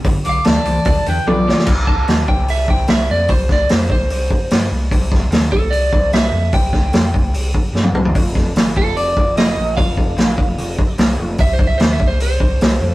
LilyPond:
<<
  \new Staff \with { instrumentName = "Harmonica" } { \time 4/4 \key c \major \tempo 4 = 148 r8 d'''8 a''4 a''8 g''8 d''4 | r1 | r1 | r1 |
r1 | r1 | r1 | r1 | }
  \new Staff \with { instrumentName = "Lead electric guitar" } { \time 4/4 \key c \major r8 f''8 d''4 d''8 b'8 f'4 | r8 a''4 g''8 e''8 g''8 e''8 d''8 | c''8 d''8 c''8 c''2 r8 | r4. a'8 d''4 e''4 |
g''2. r4 | r4. a'8 d''4 ees''4 | f''2. r4 | \tuplet 3/2 { e''8 c''8 e''8 c''8 e''8 c''8 } c''2 | }
  \new Staff \with { instrumentName = "Overdriven electric guitar" } { \clef bass \time 4/4 \key c \major <g, d>8 <g, d>8 <g, e>8 <g, e>8 <g, d>8 <g, d>8 <g, e>8 <g, e>8 | r1 | r1 | r1 |
r1 | r1 | r1 | r1 | }
  \new Staff \with { instrumentName = "Analog synth bass" } { \clef bass \time 4/4 \key c \major g,,8 b,,8 d,8 c,8 d,8 e,8 b,,4 | c,4 ees,8 c,4 c,8 c,8 f,8 | c,4 f,8 c,8 c,8 r8 g,8 c,8 | c,4 ees,8 c,4 c,8 c,8 f,8 |
c,4 f,8 c,8 c,8 r8 g,8 c,8 | f,,4 aes,,8 f,,4 f,,8 f,,8 bes,,8 | f,,4 bes,,8 f,,8 f,,8 r8 c,8 f,,8 | c,4 ees,8 c,4 c,8 c,8 f,8 | }
  \new DrumStaff \with { instrumentName = "Drums" } \drummode { \time 4/4 <hho bd>8 hho8 <hho sn>8 hho8 <hho bd>8 hho8 tommh8 sn16 sn16 | <cymc bd>8 bd8 <hho sn>8 bd8 hho8 bd8 <hho sn>4 | <hho bd>8 <bd sn>8 <hho sn>8 bd8 hho8 bd8 <hho sn>4 | <hho bd>8 <bd sn>8 <hho sn>8 bd8 hho8 bd8 <hho sn>4 |
<hho bd>8 <bd sn>8 <hho sn>8 bd8 hho8 bd8 sn16 tommh16 toml16 tomfh16 | <hho bd>8 <bd sn>8 <hho sn>8 bd8 hho8 bd8 <hho sn>4 | <hho bd>8 bd8 <hho sn>8 bd8 hho8 bd8 <hho sn>4 | <hho bd>8 bd8 <hho sn>8 bd8 hho8 bd8 <hho sn>4 | }
>>